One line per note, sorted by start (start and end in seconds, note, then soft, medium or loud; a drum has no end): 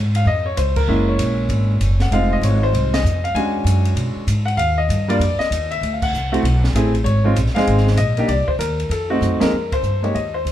0.00 0.25 G#2 medium
0.15 0.26 F5 medium
0.15 ride medium
0.25 0.56 F2 medium
0.25 0.45 D#5 loud
0.46 0.57 C#5 medium
0.57 0.87 C#2 medium
0.57 0.77 C5 medium
0.57 hi-hat pedal medium
0.57 ride medium
0.76 1.09 A#4 medium
0.76 kick medium
0.76 crash medium
0.88 1.18 F#1 medium
0.88 1.74 G#3 medium
0.88 1.74 A#3 medium
0.88 1.74 C#4 medium
0.88 1.74 E4 medium
1.08 1.97 C#5 medium
1.19 1.48 A#1 medium
1.19 hi-hat pedal soft
1.19 ride medium
1.49 1.80 G#1 medium
1.49 ride medium
1.80 2.10 F#1 medium
1.80 hi-hat pedal soft
1.80 ride medium
2.00 2.13 F#5 medium
2.00 snare soft
2.00 ride soft
2.11 2.41 F1 medium
2.11 2.98 G#3 medium
2.11 2.98 C4 medium
2.11 2.98 D#4 medium
2.11 2.98 F4 medium
2.11 2.32 F5 medium
2.11 ride medium
2.33 2.44 D#5 medium
2.41 2.72 G#1 medium
2.41 2.63 C#5 medium
2.41 hi-hat pedal medium
2.41 ride medium
2.63 2.95 C5 medium
2.73 3.03 C2 medium
2.73 ride medium
2.94 3.22 D#5 medium
2.94 snare medium
2.94 ride medium
3.04 3.34 F2 medium
3.04 hi-hat pedal medium
3.24 3.35 F5 medium
3.24 ride soft
3.34 3.64 E2 medium
3.34 4.21 G#3 medium
3.34 4.22 C#4 medium
3.34 4.22 D4 medium
3.34 4.22 F#4 medium
3.34 3.93 G#5 loud
3.34 ride medium
3.64 3.95 F#2 medium
3.64 hi-hat pedal medium
3.64 ride medium
3.85 ride soft
3.95 4.14 B2 medium
3.95 ride medium
4.16 muted upright bass stroke soft
4.27 4.57 G#2 medium
4.27 hi-hat pedal medium
4.27 ride medium
4.45 4.57 F#5 medium
4.45 ride soft
4.57 4.88 D#2 medium
4.57 4.78 F5 loud
4.57 ride medium
4.78 5.10 D#5 medium
4.89 5.19 G2 medium
4.89 hi-hat pedal medium
4.89 ride medium
5.08 5.19 G3 medium
5.08 5.19 A#3 medium
5.08 5.19 D4 medium
5.08 5.20 F4 medium
5.08 5.38 D5 loud
5.08 ride soft
5.19 5.38 F2 medium
5.19 ride medium
5.39 5.68 D#5 loud
5.39 muted upright bass stroke soft
5.39 snare soft
5.50 5.81 D#2 medium
5.50 hi-hat pedal medium
5.50 ride medium
5.71 5.91 E5 medium
5.71 ride soft
5.81 6.12 D2 medium
5.81 ride medium
5.93 6.02 F5 medium
6.02 6.60 F#5 medium
6.02 kick medium
6.02 crash medium
6.13 6.42 C2 medium
6.13 hi-hat pedal medium
6.32 6.42 A3 medium
6.32 6.43 C4 medium
6.32 6.43 E4 medium
6.32 6.43 F#4 medium
6.32 ride soft
6.43 6.73 B1 loud
6.43 ride medium
6.64 snare medium
6.73 7.04 A1 medium
6.73 6.92 A3 medium
6.73 6.92 C4 medium
6.73 6.92 E4 medium
6.73 6.92 G#4 medium
6.73 hi-hat pedal medium
6.73 ride medium
6.95 ride soft
7.04 7.35 G#1 medium
7.04 7.33 C#5 loud
7.04 ride medium
7.24 7.35 G#3 medium
7.24 7.35 C4 medium
7.24 7.35 D#4 medium
7.24 7.35 F4 medium
7.36 7.54 A#1 medium
7.36 hi-hat pedal medium
7.36 ride medium
7.46 snare soft
7.55 7.96 G#3 medium
7.55 7.96 C4 medium
7.55 7.96 D#4 medium
7.55 7.96 G#4 medium
7.55 7.84 F5 medium
7.55 snare soft
7.55 ride soft
7.67 7.96 G#1 medium
7.67 ride medium
7.78 snare soft
7.87 snare soft
7.97 8.27 A#1 medium
7.97 8.30 D#5 medium
7.97 hi-hat pedal soft
7.97 ride medium
8.17 8.28 A#3 medium
8.17 8.28 D4 medium
8.17 8.28 D#4 medium
8.17 8.29 G4 medium
8.17 ride soft
8.28 8.46 C2 medium
8.28 8.48 D5 medium
8.28 ride medium
8.48 8.53 C5 medium
8.48 muted upright bass stroke soft
8.48 kick medium
8.59 8.89 D#2 medium
8.59 8.91 A#4 medium
8.59 hi-hat pedal medium
8.59 ride medium
8.80 ride soft
8.89 9.20 F2 medium
8.89 9.38 A4 medium
8.89 ride medium
9.10 9.39 A3 medium
9.10 9.39 C4 medium
9.10 9.39 D#4 medium
9.10 9.39 F#4 medium
9.21 9.31 F#2 medium
9.21 hi-hat pedal medium
9.31 9.41 F2 soft
9.40 9.51 D#2 medium
9.40 9.51 F2 medium
9.40 9.51 G#3 medium
9.40 9.51 A#3 medium
9.40 9.51 D#4 medium
9.40 9.51 G#4 medium
9.40 9.73 A#4 medium
9.40 snare medium
9.40 ride medium
9.52 9.82 F2 medium
9.72 10.04 C5 medium
9.72 kick medium
9.72 ride medium
9.83 10.13 G2 medium
9.83 hi-hat pedal medium
10.02 10.13 G#3 medium
10.02 10.14 A#3 soft
10.02 10.14 D#4 medium
10.02 10.14 G4 medium
10.02 10.15 C#5 medium
10.02 ride soft
10.14 10.44 D#2 medium
10.14 10.33 D#5 medium
10.14 ride soft
10.34 10.52 C5 medium
10.45 10.52 C#2 medium
10.45 hi-hat pedal medium
10.45 ride medium